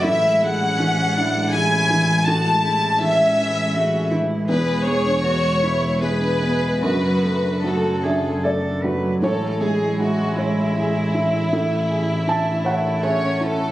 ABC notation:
X:1
M:3/4
L:1/16
Q:1/4=80
K:A
V:1 name="Violin section"
e2 f6 g4 | a4 e6 z2 | B2 c6 B4 | B4 A4 z4 |
A2 G2 F2 E6- | E8 c2 A2 |]
V:2 name="Cello"
E4 C2 D2 E4 | F2 E2 C4 F2 E2 | G4 F2 E2 G4 | F4 F2 G2 A2 B2 |
G,12 | A,12 |]
V:3 name="Felt piano"
z12 | z12 | z12 | z6 e2 d4 |
c12 | e4 a2 f2 e4 |]
V:4 name="Felt piano" clef=bass
A,,2 G,2 E,2 E2 G,2 E,2 | A,,2 G,2 E,2 E2 G,2 E,2 | E,,2 G,2 B,,2 E2 G,2 B,,2 | F,,2 A,2 F,2 D2 A,2 F,2 |
A,,2 G,2 E2 c2 G2 E2 | A,,2 G2 E2 c2 G2 E2 |]
V:5 name="Viola"
E, G, A, C A, G, E, G, A, C A, G, | E, G, A, C A, G, E, G, A, C A, G, | E, G, B, D B, G, E, G, B, D B, G, | D, F, A, D A, F, D, F, A, D A, F, |
E12- | E8 C4 |]
V:6 name="Double bass" clef=bass
A,,,12- | A,,,12 | E,,,12 | F,,,12 |
A,,,12- | A,,,12 |]